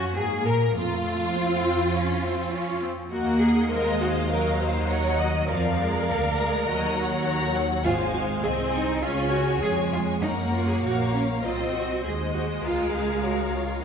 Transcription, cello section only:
0.00 0.15 F#4 medium
0.16 0.46 G#4 medium
0.45 0.53 A#4 medium
0.75 2.78 F4 medium
3.12 3.40 F#4 medium
3.41 3.71 G#4 medium
3.71 4.01 A#4 medium
4.01 4.09 F#4 medium
4.30 4.59 A#4 medium
4.59 4.89 C5 medium
4.88 5.19 C#5 loud
5.18 5.49 D#5 medium
5.48 7.55 A#4 medium
7.85 7.93 F4 loud
8.13 8.21 F#4 medium
8.44 8.52 G#4 medium
8.73 9.02 D#4 medium
9.03 9.32 F4 medium
9.32 9.61 F#4 medium
9.62 9.70 G#4 loud
9.92 10.00 F4 medium
10.22 10.30 D#4 medium
10.52 10.67 F4 medium
10.68 10.82 G#4 medium
10.83 11.12 F#4 medium
11.13 11.21 C#4 medium
11.43 11.72 F4 medium
11.74 12.04 F#4 medium
12.03 12.11 G#4 medium
12.34 12.42 F#4 medium
12.63 12.93 F4 medium
12.93 13.23 G#4 medium
13.23 13.53 F#4 medium
13.53 13.84 F4 medium

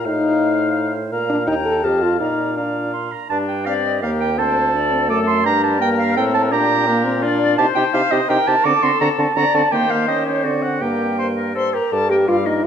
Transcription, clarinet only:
0.05 1.12 C5 medium
1.12 1.46 A#4 medium
1.47 1.85 A#4 medium
1.83 2.19 D#5 medium
2.20 2.56 D5 medium
2.56 2.92 D5 medium
2.93 3.13 C6 medium
3.11 3.29 A#5 medium
3.29 3.38 A5 loud
3.48 3.65 G5 medium
3.66 3.74 F5 medium
3.85 4.02 D#5 medium
4.03 4.11 F5 medium
4.20 4.38 G5 loud
4.39 5.08 A5 loud
5.10 5.18 D6 loud
5.27 5.45 C6 loud
5.46 5.63 A#5 loud
5.63 5.81 A5 loud
5.81 5.89 G5 loud
5.99 6.16 F5 loud
6.17 6.25 G5 loud
6.34 6.42 A5 loud
6.52 7.22 A#5 loud
7.58 7.66 A5 loud
7.75 7.83 G5 loud
7.94 8.13 F5 loud
8.11 8.29 D#5 loud
8.29 8.49 G5 loud
8.47 8.67 A5 loud
8.65 8.84 D6 loud
8.83 9.00 C6 loud
9.01 9.09 A#5 loud
9.18 9.38 A5 loud
9.37 9.56 A#5 loud
9.54 9.73 A5 loud
9.72 9.91 G5 loud
9.90 10.07 F5 loud
10.08 10.25 D#5 loud
10.26 10.44 C#5 medium
10.44 10.64 D5 medium
10.62 10.82 F#5 medium
10.81 11.55 G5 medium
11.93 12.12 G3 medium
12.11 12.30 A#3 medium
12.28 12.47 G3 medium
12.46 12.64 A#3 medium

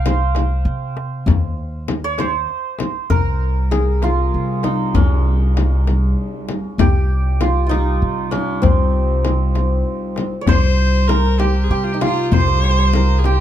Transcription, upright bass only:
0.00 0.61 C2 medium
0.65 1.23 C3 medium
1.26 2.45 D#2 medium
3.10 4.29 C2 medium
4.34 4.91 C3 medium
4.94 6.13 C2 loud
6.78 7.97 C2 medium
8.02 8.59 C3 medium
8.62 9.82 C2 medium
10.47 11.66 C2 medium
11.70 12.28 C3 medium
12.32 13.40 C2 loud

